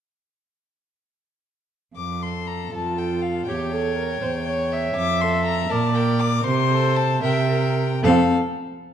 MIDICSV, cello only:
0, 0, Header, 1, 2, 480
1, 0, Start_track
1, 0, Key_signature, -1, "major"
1, 0, Tempo, 504202
1, 1877, Time_signature, 6, 3, 24, 8
1, 2840, Tempo, 495868
1, 6200, Tempo, 528634
1, 8453, End_track
2, 0, Start_track
2, 0, Title_t, "Cello"
2, 0, Program_c, 0, 42
2, 1868, Note_on_c, 0, 41, 49
2, 2510, Note_off_c, 0, 41, 0
2, 2593, Note_on_c, 0, 41, 50
2, 3235, Note_off_c, 0, 41, 0
2, 3315, Note_on_c, 0, 40, 55
2, 3949, Note_off_c, 0, 40, 0
2, 4037, Note_on_c, 0, 40, 61
2, 4672, Note_off_c, 0, 40, 0
2, 4754, Note_on_c, 0, 41, 67
2, 5385, Note_off_c, 0, 41, 0
2, 5467, Note_on_c, 0, 46, 75
2, 6110, Note_off_c, 0, 46, 0
2, 6191, Note_on_c, 0, 48, 76
2, 6820, Note_off_c, 0, 48, 0
2, 6903, Note_on_c, 0, 48, 80
2, 7552, Note_off_c, 0, 48, 0
2, 7634, Note_on_c, 0, 41, 86
2, 7903, Note_off_c, 0, 41, 0
2, 8453, End_track
0, 0, End_of_file